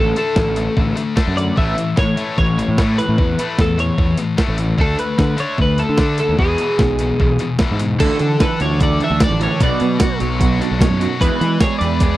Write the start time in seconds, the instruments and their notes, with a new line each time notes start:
Already playing: picked electric bass A1, distorted electric guitar D3 A3
0.00 clean electric guitar A4
0.16 distorted electric guitar D3 A3 D4, clean electric guitar A4, closed hi-hat
0.36 picked electric bass A1, distorted electric guitar D3 A3, kick, snare
0.56 distorted electric guitar D3 A3, closed hi-hat
0.77 picked electric bass A1, distorted electric guitar D3 A3, kick
0.96 distorted electric guitar D3 A3, closed hi-hat
1.16 distorted electric guitar D3 A3 D4, kick, snare
1.27 picked electric bass F#2
1.35 distorted electric guitar D3 A3, clean electric guitar D5, closed hi-hat
1.56 picked electric bass A1, distorted electric guitar A2 E3 A3, clean electric guitar E5, kick
1.76 distorted electric guitar A2 E3, closed hi-hat
1.96 distorted electric guitar A2 E3, picked electric bass A2, clean electric guitar C#5, kick, snare
2.17 distorted electric guitar A2 E3 A3, closed hi-hat
2.38 picked electric bass A1, distorted electric guitar A2 E3, clean electric guitar C#5, kick
2.58 distorted electric guitar A2 E3, closed hi-hat
2.68 picked electric bass A2
2.78 distorted electric guitar A2 E3 A3, kick, snare
2.98 distorted electric guitar A2 E3, clean electric guitar B4, closed hi-hat
3.09 picked electric bass A2
3.18 picked electric bass E2, distorted electric guitar A2 E3, kick
3.39 distorted electric guitar A2 E3 A3, closed hi-hat
3.58 picked electric bass E2, distorted electric guitar A2 E3, clean electric guitar A4, kick, snare
3.78 distorted electric guitar A2 E3, clean electric guitar C#5, closed hi-hat
3.98 picked electric bass E2, distorted electric guitar A2 E3, kick
4.17 distorted electric guitar A2 E3, closed hi-hat
4.37 distorted electric guitar A2 E3 A3, kick, snare
4.48 picked electric bass A1
4.58 distorted electric guitar A2 E3, closed hi-hat
4.78 picked electric bass D2, distorted electric guitar D3 A3 D4, clean electric guitar A4, kick
4.98 distorted electric guitar D3 A3, clean electric guitar B4, closed hi-hat
5.18 distorted electric guitar D3 A3, picked electric bass D3, kick, snare
5.37 distorted electric guitar D3 A3 D4, clean electric guitar C#5, closed hi-hat
5.58 picked electric bass D2, distorted electric guitar D3 A3, clean electric guitar B4, kick
5.78 distorted electric guitar D3 A3, clean electric guitar A4, closed hi-hat
5.89 picked electric bass D3
5.98 distorted electric guitar D3 A3 D4, kick, snare
6.18 distorted electric guitar D3 A3, clean electric guitar A4, closed hi-hat
6.29 picked electric bass D#2
6.39 picked electric bass E2, distorted electric guitar E2 B2 E3, clean electric guitar G#4, kick
6.58 distorted electric guitar E2 B2, closed hi-hat
6.62 distorted electric guitar E3
6.79 picked electric bass B1, distorted electric guitar E2 B2, kick, snare
6.99 distorted electric guitar E2 B2, closed hi-hat
7.20 picked electric bass B1, distorted electric guitar E2 B2, kick
7.39 distorted electric guitar E2 B2, closed hi-hat
7.59 distorted electric guitar E2 B2 E3, kick, snare
7.71 picked electric bass G#2
7.79 distorted electric guitar E2 B2, closed hi-hat
7.99 picked electric bass D2, overdriven electric guitar D3 E3 A3, distorted electric guitar D3, clean electric guitar A4, kick, closed hi-hat, crash
8.19 overdriven electric guitar D3 E3, picked electric bass D3, clean electric guitar A4, closed hi-hat
8.40 overdriven electric guitar D3 E3, distorted electric guitar A4, clean electric guitar B4, kick, snare, closed hi-hat
8.60 picked electric bass D2, overdriven electric guitar D3 E3, clean electric guitar C#5, distorted electric guitar D5, closed hi-hat
8.80 overdriven electric guitar D3 E3, distorted electric guitar A4, clean electric guitar D5, kick, closed hi-hat
9.00 overdriven electric guitar D3 E3, distorted electric guitar D4, closed hi-hat
9.04 clean electric guitar E5
9.10 picked electric bass D2
9.20 overdriven electric guitar D3 E3, distorted electric guitar D5, clean electric guitar D5, kick, snare, closed hi-hat
9.31 picked electric bass A1
9.40 overdriven electric guitar D3 E3, distorted electric guitar A4, clean electric guitar C#5, snare, closed hi-hat
9.60 picked electric bass B1, overdriven electric guitar B2 F#3 B3, distorted electric guitar B2, clean electric guitar D5, kick, closed hi-hat
9.80 overdriven electric guitar B2 F#3, picked electric bass B2, closed hi-hat
9.99 overdriven electric guitar B2 F#3, distorted electric guitar F#4, kick, snare, closed hi-hat
10.20 picked electric bass B1, overdriven electric guitar B2 F#3, distorted electric guitar C#5, closed hi-hat
10.39 overdriven electric guitar B2 F#3, distorted electric guitar F#4, kick, closed hi-hat
10.60 overdriven electric guitar B2 F#3, distorted electric guitar D4, closed hi-hat
10.71 picked electric bass B1
10.79 overdriven electric guitar B2 F#3, distorted electric guitar C#5, kick, snare, closed hi-hat
10.90 picked electric bass F#2
11.00 overdriven electric guitar B2 F#3, distorted electric guitar F#4, snare, closed hi-hat
11.20 picked electric bass E2, overdriven electric guitar E3 G#3 B3, distorted electric guitar E3, clean electric guitar B4, kick, closed hi-hat
11.40 picked electric bass E3, overdriven electric guitar E3 G#3, clean electric guitar B4, closed hi-hat
11.60 overdriven electric guitar E3 G#3, distorted electric guitar G#4, clean electric guitar C#5, kick, snare, closed hi-hat
11.79 picked electric bass E2, overdriven electric guitar E3 G#3, distorted electric guitar B4, clean electric guitar D5, closed hi-hat
12.00 overdriven electric guitar E3 G#3, distorted electric guitar G#4, kick, closed hi-hat